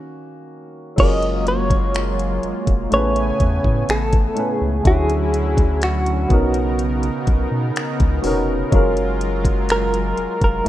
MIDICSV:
0, 0, Header, 1, 6, 480
1, 0, Start_track
1, 0, Key_signature, 6, "major"
1, 0, Tempo, 967742
1, 487, Time_signature, 4, 2, 24, 8
1, 5301, End_track
2, 0, Start_track
2, 0, Title_t, "Clean electric guitar"
2, 0, Program_c, 0, 27
2, 496, Note_on_c, 0, 75, 108
2, 733, Note_off_c, 0, 75, 0
2, 735, Note_on_c, 0, 73, 103
2, 1451, Note_off_c, 0, 73, 0
2, 1457, Note_on_c, 0, 73, 102
2, 1938, Note_on_c, 0, 69, 90
2, 1946, Note_off_c, 0, 73, 0
2, 2245, Note_off_c, 0, 69, 0
2, 2245, Note_on_c, 0, 68, 90
2, 2392, Note_off_c, 0, 68, 0
2, 2417, Note_on_c, 0, 68, 95
2, 2894, Note_off_c, 0, 68, 0
2, 2896, Note_on_c, 0, 66, 82
2, 4072, Note_off_c, 0, 66, 0
2, 4820, Note_on_c, 0, 70, 94
2, 5173, Note_off_c, 0, 70, 0
2, 5179, Note_on_c, 0, 70, 91
2, 5296, Note_off_c, 0, 70, 0
2, 5301, End_track
3, 0, Start_track
3, 0, Title_t, "Grand piano"
3, 0, Program_c, 1, 0
3, 0, Control_c, 1, 64, 127
3, 0, Note_on_c, 1, 51, 53
3, 0, Note_on_c, 1, 58, 51
3, 0, Note_on_c, 1, 61, 61
3, 0, Note_on_c, 1, 66, 92
3, 225, Note_off_c, 1, 66, 0
3, 466, Note_off_c, 1, 51, 0
3, 467, Note_off_c, 1, 58, 0
3, 469, Note_off_c, 1, 61, 0
3, 476, Note_on_c, 1, 54, 71
3, 482, Note_on_c, 1, 61, 66
3, 488, Note_on_c, 1, 65, 65
3, 493, Control_c, 1, 64, 0
3, 494, Note_on_c, 1, 68, 69
3, 500, Note_on_c, 1, 70, 81
3, 579, Control_c, 1, 64, 127
3, 1115, Note_off_c, 1, 54, 0
3, 1118, Note_off_c, 1, 61, 0
3, 1121, Note_off_c, 1, 65, 0
3, 1124, Note_off_c, 1, 68, 0
3, 1127, Note_off_c, 1, 70, 0
3, 1437, Note_on_c, 1, 45, 78
3, 1443, Note_on_c, 1, 57, 73
3, 1449, Note_on_c, 1, 61, 70
3, 1452, Control_c, 1, 64, 0
3, 1455, Note_on_c, 1, 68, 71
3, 1461, Note_on_c, 1, 71, 87
3, 1528, Control_c, 1, 64, 127
3, 2018, Note_off_c, 1, 45, 0
3, 2021, Note_off_c, 1, 57, 0
3, 2024, Note_off_c, 1, 61, 0
3, 2027, Note_off_c, 1, 68, 0
3, 2030, Note_off_c, 1, 71, 0
3, 2156, Note_on_c, 1, 45, 76
3, 2162, Note_on_c, 1, 57, 69
3, 2168, Note_on_c, 1, 61, 69
3, 2174, Note_on_c, 1, 80, 67
3, 2180, Note_on_c, 1, 71, 85
3, 2320, Note_off_c, 1, 45, 0
3, 2323, Note_off_c, 1, 57, 0
3, 2326, Note_off_c, 1, 61, 0
3, 2329, Note_off_c, 1, 80, 0
3, 2331, Note_off_c, 1, 71, 0
3, 2396, Note_on_c, 1, 50, 75
3, 2401, Note_on_c, 1, 57, 66
3, 2407, Note_on_c, 1, 61, 68
3, 2413, Control_c, 1, 64, 0
3, 2413, Note_on_c, 1, 64, 71
3, 2419, Note_on_c, 1, 66, 86
3, 2505, Control_c, 1, 64, 127
3, 3035, Note_off_c, 1, 50, 0
3, 3037, Note_off_c, 1, 57, 0
3, 3040, Note_off_c, 1, 61, 0
3, 3043, Note_off_c, 1, 64, 0
3, 3046, Note_off_c, 1, 66, 0
3, 3117, Note_on_c, 1, 47, 79
3, 3122, Note_on_c, 1, 59, 76
3, 3128, Note_on_c, 1, 61, 68
3, 3134, Control_c, 1, 64, 0
3, 3134, Note_on_c, 1, 63, 75
3, 3140, Note_on_c, 1, 70, 88
3, 3206, Control_c, 1, 64, 127
3, 3890, Note_off_c, 1, 47, 0
3, 3892, Note_off_c, 1, 59, 0
3, 3895, Note_off_c, 1, 61, 0
3, 3898, Note_off_c, 1, 63, 0
3, 3901, Note_off_c, 1, 70, 0
3, 4077, Note_on_c, 1, 47, 85
3, 4083, Note_on_c, 1, 59, 79
3, 4089, Note_on_c, 1, 61, 80
3, 4094, Note_on_c, 1, 63, 79
3, 4100, Note_on_c, 1, 70, 101
3, 4240, Note_off_c, 1, 47, 0
3, 4243, Note_off_c, 1, 59, 0
3, 4246, Note_off_c, 1, 61, 0
3, 4249, Note_off_c, 1, 63, 0
3, 4252, Note_off_c, 1, 70, 0
3, 4318, Note_on_c, 1, 54, 86
3, 4324, Note_on_c, 1, 61, 80
3, 4330, Note_on_c, 1, 65, 81
3, 4334, Control_c, 1, 64, 0
3, 4335, Note_on_c, 1, 68, 83
3, 4341, Note_on_c, 1, 70, 100
3, 4408, Control_c, 1, 64, 127
3, 4956, Note_off_c, 1, 54, 0
3, 4959, Note_off_c, 1, 61, 0
3, 4962, Note_off_c, 1, 65, 0
3, 4964, Note_off_c, 1, 68, 0
3, 4967, Note_off_c, 1, 70, 0
3, 5277, Note_on_c, 1, 45, 78
3, 5282, Note_on_c, 1, 57, 73
3, 5293, Control_c, 1, 64, 0
3, 5301, Note_off_c, 1, 45, 0
3, 5301, Note_off_c, 1, 57, 0
3, 5301, End_track
4, 0, Start_track
4, 0, Title_t, "Analog synth pad"
4, 0, Program_c, 2, 89
4, 488, Note_on_c, 2, 54, 90
4, 488, Note_on_c, 2, 56, 73
4, 488, Note_on_c, 2, 58, 77
4, 489, Note_on_c, 2, 65, 78
4, 1438, Note_off_c, 2, 54, 0
4, 1438, Note_off_c, 2, 56, 0
4, 1438, Note_off_c, 2, 58, 0
4, 1438, Note_off_c, 2, 65, 0
4, 1448, Note_on_c, 2, 57, 75
4, 1448, Note_on_c, 2, 59, 76
4, 1448, Note_on_c, 2, 80, 92
4, 1449, Note_on_c, 2, 49, 79
4, 2398, Note_off_c, 2, 49, 0
4, 2398, Note_off_c, 2, 57, 0
4, 2398, Note_off_c, 2, 59, 0
4, 2398, Note_off_c, 2, 80, 0
4, 2408, Note_on_c, 2, 50, 81
4, 2409, Note_on_c, 2, 54, 72
4, 2409, Note_on_c, 2, 61, 68
4, 2409, Note_on_c, 2, 64, 86
4, 3120, Note_off_c, 2, 50, 0
4, 3121, Note_off_c, 2, 54, 0
4, 3121, Note_off_c, 2, 61, 0
4, 3121, Note_off_c, 2, 64, 0
4, 3127, Note_on_c, 2, 49, 80
4, 3127, Note_on_c, 2, 63, 86
4, 3127, Note_on_c, 2, 70, 73
4, 3128, Note_on_c, 2, 59, 74
4, 4315, Note_off_c, 2, 49, 0
4, 4315, Note_off_c, 2, 59, 0
4, 4315, Note_off_c, 2, 63, 0
4, 4326, Note_on_c, 2, 54, 89
4, 4326, Note_on_c, 2, 56, 70
4, 4326, Note_on_c, 2, 65, 83
4, 5267, Note_off_c, 2, 70, 0
4, 5277, Note_off_c, 2, 54, 0
4, 5277, Note_off_c, 2, 56, 0
4, 5277, Note_off_c, 2, 65, 0
4, 5301, End_track
5, 0, Start_track
5, 0, Title_t, "Analog synth bass"
5, 0, Program_c, 3, 38
5, 487, Note_on_c, 3, 30, 114
5, 1187, Note_off_c, 3, 30, 0
5, 1208, Note_on_c, 3, 29, 46
5, 1256, Note_off_c, 3, 29, 0
5, 1326, Note_on_c, 3, 29, 94
5, 1425, Note_off_c, 3, 29, 0
5, 1449, Note_on_c, 3, 33, 113
5, 1646, Note_off_c, 3, 33, 0
5, 1689, Note_on_c, 3, 40, 98
5, 1787, Note_off_c, 3, 40, 0
5, 1808, Note_on_c, 3, 45, 94
5, 1907, Note_off_c, 3, 45, 0
5, 1929, Note_on_c, 3, 33, 97
5, 2126, Note_off_c, 3, 33, 0
5, 2289, Note_on_c, 3, 37, 97
5, 2387, Note_off_c, 3, 37, 0
5, 2408, Note_on_c, 3, 38, 110
5, 3107, Note_off_c, 3, 38, 0
5, 3127, Note_on_c, 3, 35, 96
5, 3522, Note_off_c, 3, 35, 0
5, 3609, Note_on_c, 3, 35, 96
5, 3707, Note_off_c, 3, 35, 0
5, 3728, Note_on_c, 3, 47, 90
5, 3827, Note_off_c, 3, 47, 0
5, 3970, Note_on_c, 3, 37, 96
5, 4067, Note_off_c, 3, 37, 0
5, 4088, Note_on_c, 3, 29, 91
5, 4285, Note_off_c, 3, 29, 0
5, 4328, Note_on_c, 3, 30, 112
5, 5028, Note_off_c, 3, 30, 0
5, 5049, Note_on_c, 3, 29, 47
5, 5096, Note_off_c, 3, 29, 0
5, 5167, Note_on_c, 3, 29, 91
5, 5266, Note_off_c, 3, 29, 0
5, 5301, End_track
6, 0, Start_track
6, 0, Title_t, "Drums"
6, 487, Note_on_c, 9, 36, 124
6, 487, Note_on_c, 9, 42, 71
6, 487, Note_on_c, 9, 49, 96
6, 536, Note_off_c, 9, 36, 0
6, 536, Note_off_c, 9, 42, 0
6, 537, Note_off_c, 9, 49, 0
6, 608, Note_on_c, 9, 42, 51
6, 657, Note_off_c, 9, 42, 0
6, 728, Note_on_c, 9, 42, 66
6, 777, Note_off_c, 9, 42, 0
6, 845, Note_on_c, 9, 36, 95
6, 846, Note_on_c, 9, 42, 75
6, 894, Note_off_c, 9, 36, 0
6, 896, Note_off_c, 9, 42, 0
6, 965, Note_on_c, 9, 42, 67
6, 971, Note_on_c, 9, 26, 111
6, 1014, Note_off_c, 9, 42, 0
6, 1021, Note_off_c, 9, 26, 0
6, 1088, Note_on_c, 9, 42, 54
6, 1138, Note_off_c, 9, 42, 0
6, 1207, Note_on_c, 9, 42, 44
6, 1256, Note_off_c, 9, 42, 0
6, 1325, Note_on_c, 9, 42, 53
6, 1326, Note_on_c, 9, 36, 90
6, 1375, Note_off_c, 9, 36, 0
6, 1375, Note_off_c, 9, 42, 0
6, 1448, Note_on_c, 9, 42, 67
6, 1497, Note_off_c, 9, 42, 0
6, 1567, Note_on_c, 9, 42, 54
6, 1617, Note_off_c, 9, 42, 0
6, 1686, Note_on_c, 9, 42, 54
6, 1688, Note_on_c, 9, 36, 84
6, 1736, Note_off_c, 9, 42, 0
6, 1738, Note_off_c, 9, 36, 0
6, 1807, Note_on_c, 9, 36, 90
6, 1857, Note_off_c, 9, 36, 0
6, 1928, Note_on_c, 9, 42, 66
6, 1934, Note_on_c, 9, 26, 117
6, 1978, Note_off_c, 9, 42, 0
6, 1984, Note_off_c, 9, 26, 0
6, 2046, Note_on_c, 9, 42, 57
6, 2049, Note_on_c, 9, 36, 100
6, 2096, Note_off_c, 9, 42, 0
6, 2098, Note_off_c, 9, 36, 0
6, 2166, Note_on_c, 9, 42, 69
6, 2215, Note_off_c, 9, 42, 0
6, 2407, Note_on_c, 9, 36, 116
6, 2407, Note_on_c, 9, 42, 71
6, 2456, Note_off_c, 9, 36, 0
6, 2456, Note_off_c, 9, 42, 0
6, 2528, Note_on_c, 9, 42, 49
6, 2577, Note_off_c, 9, 42, 0
6, 2648, Note_on_c, 9, 42, 69
6, 2697, Note_off_c, 9, 42, 0
6, 2765, Note_on_c, 9, 36, 94
6, 2767, Note_on_c, 9, 42, 75
6, 2814, Note_off_c, 9, 36, 0
6, 2817, Note_off_c, 9, 42, 0
6, 2885, Note_on_c, 9, 42, 74
6, 2892, Note_on_c, 9, 26, 109
6, 2934, Note_off_c, 9, 42, 0
6, 2941, Note_off_c, 9, 26, 0
6, 3008, Note_on_c, 9, 42, 51
6, 3057, Note_off_c, 9, 42, 0
6, 3126, Note_on_c, 9, 36, 107
6, 3126, Note_on_c, 9, 42, 43
6, 3175, Note_off_c, 9, 42, 0
6, 3176, Note_off_c, 9, 36, 0
6, 3244, Note_on_c, 9, 42, 53
6, 3294, Note_off_c, 9, 42, 0
6, 3368, Note_on_c, 9, 42, 66
6, 3417, Note_off_c, 9, 42, 0
6, 3487, Note_on_c, 9, 42, 52
6, 3537, Note_off_c, 9, 42, 0
6, 3606, Note_on_c, 9, 42, 55
6, 3608, Note_on_c, 9, 36, 90
6, 3656, Note_off_c, 9, 42, 0
6, 3658, Note_off_c, 9, 36, 0
6, 3849, Note_on_c, 9, 42, 71
6, 3855, Note_on_c, 9, 26, 114
6, 3899, Note_off_c, 9, 42, 0
6, 3904, Note_off_c, 9, 26, 0
6, 3968, Note_on_c, 9, 42, 52
6, 3969, Note_on_c, 9, 36, 97
6, 4017, Note_off_c, 9, 42, 0
6, 4019, Note_off_c, 9, 36, 0
6, 4086, Note_on_c, 9, 46, 73
6, 4135, Note_off_c, 9, 46, 0
6, 4327, Note_on_c, 9, 36, 119
6, 4327, Note_on_c, 9, 42, 66
6, 4376, Note_off_c, 9, 36, 0
6, 4376, Note_off_c, 9, 42, 0
6, 4448, Note_on_c, 9, 42, 51
6, 4498, Note_off_c, 9, 42, 0
6, 4569, Note_on_c, 9, 42, 67
6, 4618, Note_off_c, 9, 42, 0
6, 4685, Note_on_c, 9, 36, 90
6, 4688, Note_on_c, 9, 42, 78
6, 4735, Note_off_c, 9, 36, 0
6, 4738, Note_off_c, 9, 42, 0
6, 4806, Note_on_c, 9, 42, 73
6, 4812, Note_on_c, 9, 26, 110
6, 4855, Note_off_c, 9, 42, 0
6, 4862, Note_off_c, 9, 26, 0
6, 4929, Note_on_c, 9, 42, 54
6, 4979, Note_off_c, 9, 42, 0
6, 5047, Note_on_c, 9, 42, 44
6, 5096, Note_off_c, 9, 42, 0
6, 5166, Note_on_c, 9, 36, 93
6, 5166, Note_on_c, 9, 42, 50
6, 5215, Note_off_c, 9, 42, 0
6, 5216, Note_off_c, 9, 36, 0
6, 5301, End_track
0, 0, End_of_file